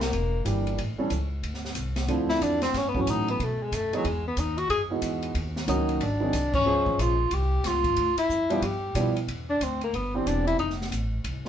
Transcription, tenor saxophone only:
0.00 A#3
2.29 E4
2.42 D4
2.63 C4
2.77 C#4
2.88 B3
3.00 C#4
3.10 D#4
3.30 B3
3.43 A3
3.63 G#3
3.74 A3
3.96 F#3
4.08 G#3
4.28 B3
4.39 D#4
4.58 F#4
4.70 G#4
5.69 D#4
6.03 D4
6.55 C#4
7.00 F4
7.34 G4
7.67 F4
8.18 E4
8.64 G4
9.50 D4
9.63 C4
9.84 A#3
9.96 B3
10.15 C4
10.27 D4
10.47 E4
10.60 D#4

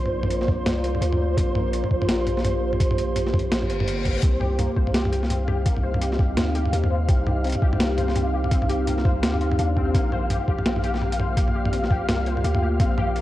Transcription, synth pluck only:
4.22 C4
4.40 G4
4.58 A#3
4.76 C5
4.94 G4
5.12 G4
5.30 C4
5.47 G4
5.66 A#3
5.83 C5
6.01 G4
6.19 G4
6.37 C4
6.55 G4
6.73 A#3
6.90 C5
7.09 G4
7.27 G4
7.45 C4
7.62 G4
7.80 A#3
7.98 C5
8.16 G4
8.34 G4
8.51 C4
8.69 G4
8.87 A#3
9.05 C5
9.23 G4
9.41 C4
9.59 D4
9.77 C4
9.95 A#3
10.13 C5
10.30 G4
10.49 G4
10.66 C4
10.84 G4
11.02 A#3
11.20 C5
11.37 G4
11.55 G4
11.73 C4
11.91 G4
12.09 A#3
12.27 C5
12.45 G4
12.63 G4
12.80 C4
12.98 G4
13.16 A#3

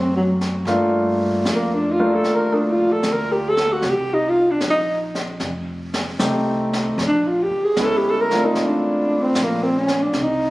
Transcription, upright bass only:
Already playing: F#2
0.65 G2
1.45 F2
2.24 D#2
2.52 D2
2.78 A#1
3.04 D2
3.83 C2
4.61 A#1
5.40 F1
6.20 C2
6.98 A#1
7.51 muted upright bass stroke
7.76 D2
8.56 A1
9.35 A#1
10.14 C2

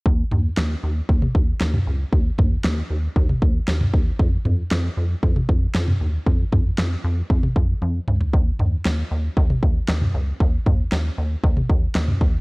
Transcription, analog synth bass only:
0.06 D#2
0.32 D#2
0.58 D#2
0.83 D#2
1.09 D#2
1.35 D#2
1.61 D#2
1.87 C#2
2.13 D#2
2.39 D#2
2.64 D#2
2.90 D#2
3.16 D#2
3.42 D#2
3.68 D#2
3.94 D#2
4.20 F2
4.45 F2
4.71 F2
4.97 F2
5.23 F2
5.49 F2
5.75 F2
6.01 D#2
6.27 F2
6.53 F2
6.78 F2
7.04 F2
7.30 F2
7.56 F2
7.82 F2
8.08 C#2
8.34 D#2
8.59 D#2
8.85 D#2
9.11 D#2
9.37 D#2
9.63 D#2
9.89 D#2
10.14 C#2
10.40 D#2
10.66 D#2
10.92 D#2
11.18 D#2
11.44 D#2
11.70 D#2
11.95 D#2
12.21 D#2

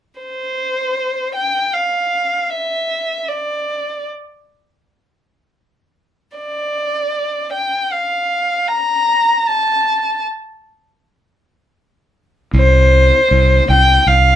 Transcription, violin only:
0.21 C5
1.35 G5
1.73 F5
2.50 E5
3.28 D5
6.37 D5
7.53 G5
7.91 F5
8.68 A#5
9.47 A5
12.56 C5
13.71 G5
14.07 F5

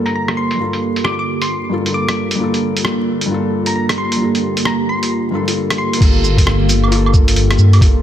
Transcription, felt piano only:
Already playing: G2 A#3 F4 A4
0.55 G2 A#3
0.61 F4 A4
1.70 G2 A#3 F4
1.74 A4
1.82 G2 A#3
1.87 F4 A4
2.35 G2 A#3
2.41 F4 A4
3.26 G2 A#3
3.32 F4 A4
4.16 G2 A#3
4.22 F4 A4
5.31 G2 A#3 F4
5.35 A4
5.43 G2 A#3
5.48 F4 A4
5.97 A#3 F4
6.05 A4
6.88 A#3 F4
6.96 A4
7.78 A#3 F4
7.86 A4

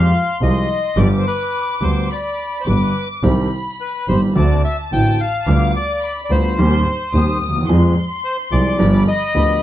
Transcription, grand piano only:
0.41 C2 C3 F3 G#3 C4 G4
0.97 G1 G2 D3 G3 B3 G4
1.81 D2 D3 G3 B3 G4
2.66 G1 G2 D3 G3 B3 G4
3.23 C2 C3 D#3 G3 C4 G4
4.08 G1 G2 D#3 G3 C4 G4
4.35 D2 D3 A3 C4 F#4
4.92 A1 A2 D3 A3 C4 F#4
5.48 D2 D3 G3 B3 F4
6.30 D2 D3 G3 B3 F4
6.58 D#2 D#3 G3 C4 G4
7.14 D#2 D#3 G3 C4 G4
7.49 D2
7.56 D#2
7.62 E2
7.69 F2 F3 G#3 C4 G#4
8.52 C2 C3 F3 G#3 C4 G#4
8.79 G1 G2 F3 B3 D4 G4
9.34 D2 D3 F3 B3 D4 G4

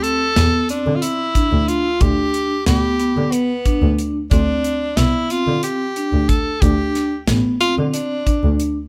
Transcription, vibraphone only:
Already playing: C4
0.36 B3
0.69 C4
1.35 D4
2.01 D4
2.67 B3
3.00 B3
3.66 D4
4.32 C4
4.98 B3
5.31 C4
5.97 D4
6.62 D4
7.28 B3
7.61 C4
8.26 D4

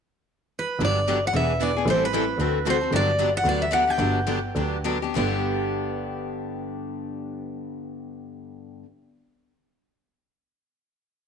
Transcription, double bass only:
0.79 G1
1.33 E1
1.85 A1
2.38 D2
2.91 G1
3.44 D2
3.98 G1
4.55 D2
5.16 G1

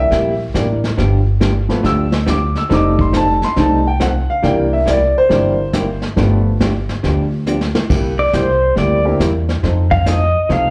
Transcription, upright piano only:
0.00 E5
0.55 E3 A#3 D4
1.69 F3 A3 B3
1.86 E6
2.30 D6
2.58 E6
2.71 G3 A3 D#4 D6
3.01 C6
3.17 A5
3.44 C6
3.58 G3 A3 D#4 A5
3.87 G5
4.02 F#5
4.30 F5
4.43 E3 A#3 D4 G5
4.73 E5
4.89 D5
5.18 C5
5.30 E3 A#3 D4
6.16 F3 A3 B3
9.05 A#3 C4 D4 E4 G4

